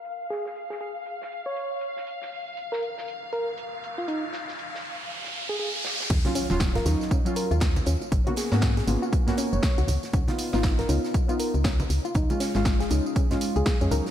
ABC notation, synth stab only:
X:1
M:4/4
L:1/16
Q:"Swing 16ths" 1/4=119
K:Ebm
V:1 name="Synth stab"
z16 | z16 | z16 | z [G,DF]2 [G,DF]2 z [G,DE]2 z [G,DF]6- [G,DF] |
z [B,CDG]2 [B,CDG]2 z [B,CDF]2 z [B,CDG]4- [B,CDG] z2 | z [CEF]2 [CEF]2 z [CEF]2 z [CEF]6- [CEF] | z [A,DF]2 [A,DF]2 z [A,DE]2 z [A,DF]4 [A,DA] [G,DE]2 |]